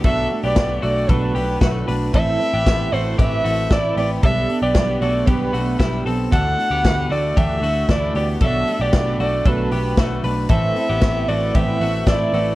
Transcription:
<<
  \new Staff \with { instrumentName = "Violin" } { \time 4/4 \key a \dorian \tempo 4 = 115 e''8. d''8. d''8 b'4. r8 | e''4. c''8 e''4 d''8 d''8 | e''8. d''8. d''8 b'4. r8 | fis''4. d''8 e''4 d''8 d''8 |
e''8. d''8. d''8 b'4. r8 | e''4. d''8 e''4 d''4 | }
  \new Staff \with { instrumentName = "Clean electric guitar" } { \time 4/4 \key a \dorian <d' a'>8. <b g'>8. <a fis'>8 <d' a'>8 <b g'>8 <a fis'>8 <d' b'>8 | <c' a'>8. <b g'>8. <a fis'>8 <b g'>8 <a fis'>8 <a e'>8 <b g'>8 | <d' a'>8. <b g'>8. <a fis'>8 <b g'>8 <a fis'>8 <g e'>8 <c' a'>8 | <d' a'>8. <b g'>8. <a fis'>8 <d' g'>8 <a fis'>8 <a e'>8 <b g'>8 |
<d' a'>8. <b g'>8. <a fis'>8 <d' a'>8 <b g'>8 <a fis'>8 <d' b'>8 | <c' a'>8. <b g'>8. <a fis'>8 <b g'>8 <a fis'>8 <a e'>8 <a fis'>8 | }
  \new Staff \with { instrumentName = "Steel-string acoustic guitar" } { \time 4/4 \key a \dorian <b, fis a d' fis'>8 <a d' fis'>8 <fis a d' fis'>8 <a d' fis'>8 <b, fis a d' fis'>8 <a d' fis'>8 <fis a d' fis'>8 <a d' fis'>8 | <a, e a c' e' b'>8 <a c' e' b'>8 <a c' e' b'>8 <a c' e' b'>8 <a, e a c' e' b'>8 <a c' e' b'>8 <a c' e' b'>8 <a c' e' b'>8 | <b, g b d' g'>8 <b d' g'>8 <g b d' g'>8 <b d' g'>8 <b, g b d' g'>8 <d' g'>8 <g b d' g'>8 <b d' g'>8 | <d e a d' fis'>8 <a d' fis'>8 <e a d' fis'>8 <a d' fis'>8 <d e a d' fis'>8 <a d' fis'>8 <e a d' fis'>8 <a d' fis'>8 |
<b, fis a d' fis'>8 <a d' fis'>8 <fis a d' fis'>8 <a d' fis'>8 <b, fis a d' fis'>8 <a d' fis'>8 <fis a d' fis'>8 <a d' fis'>8 | <a, e a c' e' b'>8 <a c' e' b'>8 <a c' e' b'>8 <a c' e' b'>8 <a, e a c' e' b'>8 <a c' e'>8 <a c' e' b'>8 <a c' e' b'>8 | }
  \new Staff \with { instrumentName = "Picked electric bass" } { \clef bass \time 4/4 \key a \dorian b,,8 r16 b,,16 b,,8 b,,8 b,,8 b,,8 b,,8 b,,8 | a,,8 r16 a,,16 a,,8 a,,8 a,,8 a,,8 a,,8 a,,8 | b,,8 r16 b,,16 b,,8 b,,8 b,,8 b,,8 b,,8 b,,8 | d,8 r16 d,16 d,8 d,8 d,8 d,8 d,8 d,8 |
b,,8 r16 b,,16 b,,8 b,,8 b,,8 b,,8 b,,8 b,,8 | a,,8 r16 a,,16 a,,8 a,,8 a,,8 a,,8 a,,8 a,,8 | }
  \new DrumStaff \with { instrumentName = "Drums" } \drummode { \time 4/4 <hhp bd cymr>8 hho8 <hhp bd cymr sn>8 hho8 <hhp bd cymr>8 hho8 <hhp bd cymr sn>8 hho8 | <hhp bd cymr>8 hho8 <hhp bd cymr sn>8 hho8 <hhp bd cymr>8 hho8 <hhp bd cymr sn>8 hho8 | <hhp bd cymr>8 hho8 <hhp bd cymr sn>8 hho8 <hhp bd cymr>8 hho8 <hhp bd cymr sn>8 hho8 | <hhp bd cymr>8 hho8 <hhp bd cymr sn>8 hho8 <hhp bd cymr>8 hho8 <hhp bd cymr sn>8 hho8 |
<hhp bd cymr>8 hho8 <hhp bd cymr sn>8 hho8 <hhp bd cymr>8 hho8 <hhp bd cymr sn>8 hho8 | <hhp bd cymr>8 hho8 <hhp bd cymr sn>8 hho8 <hhp bd cymr>8 hho8 <hhp bd cymr sn>8 hho8 | }
>>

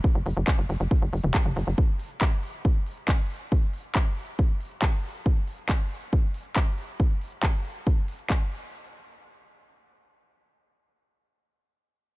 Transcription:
<<
  \new Staff \with { instrumentName = "Analog synth bass" } { \clef bass \time 4/4 \key e \mixolydian \tempo 4 = 138 r16 fis,,16 fis,,16 fis,,16 r16 fis,,16 fis,,16 fis,,16 r16 fis,,16 fis,,16 e,,16 r16 fis,,16 fis,,16 fis,,16 | r1 | r1 | r1 |
r1 | r1 | r1 | }
  \new DrumStaff \with { instrumentName = "Drums" } \drummode { \time 4/4 <hh bd>16 hh16 hho16 hh16 <hc hh bd>8 hho16 hh16 <hh bd>8 hho16 <hh toml>16 <hc hh bd>16 <hh toml>16 hho16 hho16 | <hh bd>16 hh16 hho16 hh16 <hc hh bd>8 hho16 hh16 <hh bd>8 hho16 hh16 <hc hh bd>8 hho16 hh16 | <hh bd>16 hh16 hho16 hh16 <hc hh bd>8 hho16 hh16 <hh bd>8 hho16 hh16 <hc hh bd>8 hho16 hho16 | <hh bd>16 hh16 hho16 hh16 <hc hh bd>8 hho16 hh16 <hh bd>8 hho16 hh16 <hc hh bd>8 hho16 hh16 |
<hh bd>16 hh16 hho16 hh16 <hc hh bd>16 hh16 hho16 hh16 <hh bd>16 hh16 hho16 hh16 <hc hh bd>16 hh16 hho16 hho16 | r4 r4 r4 r4 | r4 r4 r4 r4 | }
>>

